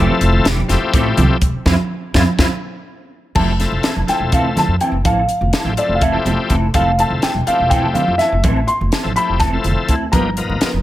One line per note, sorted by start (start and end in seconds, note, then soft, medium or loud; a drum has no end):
0.00 0.12 E3 medium
0.00 0.47 F3 medium
0.00 0.12 A3 medium
0.00 0.47 A3 medium
0.00 0.12 C4 medium
0.00 0.47 C4 medium
0.00 0.48 E4 medium
0.00 0.12 G4 medium
0.00 0.48 A4 loud
0.21 0.40 F1 medium
0.21 closed hi-hat medium
0.21 low conga soft
0.33 low conga medium
0.45 0.64 E1 medium
0.45 0.60 E3 medium
0.45 0.60 A3 medium
0.45 0.60 C4 medium
0.45 0.61 G4 medium
0.45 snare loud
0.45 closed hi-hat medium
0.56 high conga medium
0.68 0.79 F1 medium
0.68 1.37 F3 medium
0.68 1.37 A3 medium
0.68 0.84 A3 soft
0.68 1.37 C4 medium
0.68 0.84 C4 soft
0.68 1.38 E4 medium
0.68 0.84 G4 medium
0.68 1.38 G4 medium
0.68 snare soft
0.68 closed hi-hat medium
0.93 1.12 A1 medium
0.93 1.08 E3 medium
0.93 1.08 A3 medium
0.93 1.08 C4 medium
0.93 1.08 G4 medium
0.93 kick loud
0.93 closed hi-hat medium
1.17 1.27 C2 medium
1.17 1.33 A3 medium
1.17 1.33 C4 medium
1.17 1.33 G4 medium
1.17 closed hi-hat medium
1.17 high conga medium
1.17 low conga medium
1.41 1.51 E1 medium
1.41 kick medium
1.41 closed hi-hat medium
1.66 1.75 F2 medium
1.66 1.74 C4 medium
1.66 1.74 C4 loud
1.66 1.74 E4 medium
1.66 1.74 F4 medium
1.66 1.74 F4 loud
1.66 kick medium
1.66 snare medium
1.66 high conga loud
2.14 2.24 F2 medium
2.14 2.23 C4 medium
2.14 2.23 E4 medium
2.14 2.23 E4 loud
2.14 2.23 F4 medium
2.14 kick medium
2.14 snare loud
2.14 high conga loud
2.38 2.48 F2 medium
2.38 2.47 C4 loud
2.38 2.47 C4 medium
2.38 2.47 E4 medium
2.38 2.47 F4 loud
2.38 2.47 F4 medium
2.38 kick medium
2.38 snare medium
2.38 high conga medium
3.35 3.64 F1 medium
3.35 3.50 E3 medium
3.35 3.53 F3 medium
3.35 3.53 A3 medium
3.35 3.53 C4 medium
3.35 3.50 C4 medium
3.35 3.50 E4 medium
3.35 3.53 E4 medium
3.35 3.53 G4 medium
3.35 3.51 A4 medium
3.35 4.10 A5 medium
3.35 kick medium
3.35 crash medium
3.35 high conga medium
3.35 low conga soft
3.48 low conga soft
3.59 3.94 F3 medium
3.59 3.94 A3 medium
3.59 3.94 C4 medium
3.59 3.94 E4 medium
3.59 3.94 A4 medium
3.59 snare soft
3.59 closed hi-hat medium
3.72 3.81 F1 medium
3.72 low conga medium
3.83 3.99 E3 soft
3.83 3.99 C4 soft
3.83 3.99 E4 medium
3.83 3.99 A4 soft
3.83 snare loud
3.83 closed hi-hat medium
3.96 4.06 E1 medium
3.96 high conga medium
4.07 4.76 F3 medium
4.07 4.76 A3 medium
4.07 4.76 C4 medium
4.07 4.23 C4 soft
4.07 4.77 E4 medium
4.07 4.23 E4 soft
4.07 4.23 A4 soft
4.07 4.77 A4 medium
4.07 4.34 G5 medium
4.07 muted upright bass stroke soft
4.07 snare soft
4.07 closed hi-hat medium
4.07 low conga soft
4.20 4.43 E1 medium
4.32 4.47 E3 medium
4.32 4.47 C4 medium
4.32 4.47 E4 medium
4.32 4.47 A4 medium
4.32 4.39 F5 medium
4.32 kick loud
4.32 closed hi-hat medium
4.43 4.53 F1 medium
4.57 4.80 A5 medium
4.57 snare soft
4.57 closed hi-hat medium
4.57 high conga medium
4.57 low conga medium
4.68 4.78 F2 medium
4.68 low conga soft
4.80 4.95 E3 soft
4.80 4.95 C4 soft
4.80 4.95 E4 soft
4.80 4.96 A4 medium
4.80 4.86 G5 medium
4.80 closed hi-hat medium
4.92 5.05 F1 medium
5.05 5.24 A1 medium
5.05 5.20 E3 medium
5.05 5.20 C4 medium
5.05 5.20 E4 medium
5.05 5.20 A4 medium
5.05 5.80 F5 medium
5.05 kick loud
5.05 closed hi-hat medium
5.05 high conga medium
5.05 low conga soft
5.18 low conga soft
5.29 closed hi-hat medium
5.41 5.50 F1 medium
5.41 low conga medium
5.53 5.68 E3 soft
5.53 5.68 C4 medium
5.53 5.68 E4 medium
5.53 5.68 A4 medium
5.53 snare loud
5.53 closed hi-hat medium
5.64 5.74 A1 medium
5.64 5.74 F3 medium
5.64 5.74 A3 medium
5.64 5.74 C4 medium
5.64 5.74 E4 medium
5.64 5.74 G4 medium
5.64 high conga medium
5.77 6.03 F3 medium
5.77 6.03 A3 medium
5.77 6.03 C4 medium
5.77 6.04 E4 medium
5.77 6.04 A4 medium
5.77 5.96 D5 medium
5.77 closed hi-hat medium
5.77 low conga soft
5.89 6.18 F1 medium
5.95 6.02 F5 medium
6.01 6.16 E3 medium
6.01 6.16 C4 medium
6.01 6.17 E4 medium
6.01 6.17 A4 medium
6.01 6.53 E5 medium
6.01 kick loud
6.01 closed hi-hat medium
6.12 6.56 F3 medium
6.12 6.56 A3 medium
6.12 6.56 C4 medium
6.12 6.56 E4 medium
6.12 6.56 G4 medium
6.25 6.35 F1 medium
6.25 6.41 C4 soft
6.25 6.41 E4 soft
6.25 6.40 A4 soft
6.25 closed hi-hat medium
6.25 high conga medium
6.25 low conga medium
6.39 low conga soft
6.50 6.69 F1 medium
6.50 6.65 E3 medium
6.50 6.65 C4 medium
6.50 6.65 E4 medium
6.50 6.65 A4 medium
6.50 kick medium
6.50 closed hi-hat medium
6.50 low conga soft
6.74 7.02 F1 medium
6.74 6.89 E3 medium
6.74 6.91 F3 medium
6.74 6.92 A3 medium
6.74 6.89 C4 medium
6.74 6.92 C4 medium
6.74 6.89 E4 medium
6.74 6.92 E4 medium
6.74 6.89 A4 medium
6.74 6.92 A4 medium
6.74 7.00 F5 medium
6.74 kick loud
6.74 closed hi-hat medium
6.74 high conga medium
6.74 low conga soft
6.98 7.33 F3 medium
6.98 7.33 A3 medium
6.98 7.33 C4 medium
6.98 7.33 E4 medium
6.98 7.33 A4 medium
6.98 7.24 A5 medium
6.98 closed hi-hat medium
7.10 7.20 F1 medium
7.10 low conga medium
7.22 7.38 E3 soft
7.22 7.38 C4 medium
7.22 7.38 E4 medium
7.22 7.38 A4 medium
7.22 7.48 G5 medium
7.22 muted upright bass stroke soft
7.22 snare loud
7.22 closed hi-hat medium
7.34 7.44 E1 medium
7.34 high conga medium
7.47 8.15 F3 medium
7.47 8.15 A3 medium
7.47 8.15 C4 medium
7.47 7.62 C4 soft
7.47 8.16 E4 medium
7.47 7.62 E4 soft
7.47 8.16 G4 medium
7.47 7.62 A4 soft
7.47 7.72 F5 medium
7.47 muted upright bass stroke soft
7.47 closed hi-hat medium
7.47 low conga soft
7.59 7.83 E1 medium
7.70 7.86 E3 medium
7.70 7.86 C4 medium
7.70 7.86 E4 medium
7.70 7.86 A4 medium
7.70 7.96 G5 medium
7.70 kick loud
7.70 closed hi-hat medium
7.83 7.93 F1 medium
7.94 8.17 F5 medium
7.94 closed hi-hat medium
7.94 high conga medium
7.94 low conga medium
8.08 8.17 F2 medium
8.08 low conga soft
8.18 8.34 E3 medium
8.18 8.34 C4 soft
8.18 8.35 E4 medium
8.18 8.35 A4 medium
8.18 8.69 E5 medium
8.18 snare soft
8.18 closed hi-hat medium
8.18 low conga soft
8.32 8.44 F1 medium
8.44 8.63 A1 medium
8.44 8.58 E3 medium
8.44 8.59 C4 medium
8.44 8.59 E4 medium
8.44 8.59 A4 medium
8.44 kick loud
8.44 closed hi-hat medium
8.44 high conga loud
8.57 low conga soft
8.67 9.17 C6 medium
8.67 closed hi-hat medium
8.81 8.90 F1 medium
8.81 low conga medium
8.92 9.07 E3 medium
8.92 9.07 C4 medium
8.92 9.07 E4 soft
8.92 9.07 A4 medium
8.92 snare loud
8.92 closed hi-hat medium
9.03 9.14 A1 medium
9.03 9.12 F3 medium
9.03 9.13 A3 medium
9.03 9.13 C4 medium
9.03 9.13 E4 medium
9.03 9.13 A4 medium
9.03 high conga medium
9.16 9.42 F3 medium
9.16 9.42 A3 medium
9.16 9.42 C4 medium
9.16 9.32 C4 soft
9.16 9.31 E4 soft
9.16 9.43 E4 medium
9.16 9.42 G4 medium
9.16 9.31 A4 soft
9.16 9.41 B5 medium
9.16 closed hi-hat medium
9.29 9.57 F1 medium
9.39 9.55 E3 medium
9.39 9.55 C4 medium
9.39 9.55 E4 medium
9.39 9.55 A4 medium
9.39 9.90 A5 medium
9.39 kick loud
9.39 snare soft
9.39 closed hi-hat medium
9.53 9.95 F3 medium
9.53 9.95 A3 medium
9.53 9.96 C4 medium
9.53 9.96 E4 medium
9.53 9.96 A4 medium
9.53 low conga soft
9.64 9.74 F1 medium
9.64 closed hi-hat medium
9.64 low conga medium
9.88 10.07 D2 medium
9.88 10.03 E3 soft
9.88 10.04 C4 soft
9.88 10.04 E4 medium
9.88 10.04 A4 soft
9.88 kick medium
9.88 closed hi-hat medium
9.88 low conga soft
10.12 10.41 G1 medium
10.12 10.30 F3 medium
10.12 10.28 F3 medium
10.12 10.30 A#3 medium
10.12 10.30 B3 medium
10.12 10.28 B3 medium
10.12 10.30 D#4 medium
10.12 10.28 D#4 medium
10.12 10.30 G4 medium
10.12 10.28 A#4 medium
10.12 10.57 A#5 medium
10.12 kick loud
10.12 closed hi-hat medium
10.12 high conga medium
10.12 low conga soft
10.25 low conga soft
10.37 10.71 F3 medium
10.37 10.71 A#3 medium
10.37 10.72 B3 medium
10.37 10.72 D#4 medium
10.37 10.72 A#4 medium
10.37 closed hi-hat medium
10.49 10.59 G1 medium
10.49 low conga medium
10.61 10.76 F3 soft
10.61 10.76 B3 medium
10.61 10.76 D#4 medium
10.61 10.76 A#4 medium
10.61 snare loud
10.61 closed hi-hat medium
10.73 10.82 F1 medium
10.73 high conga medium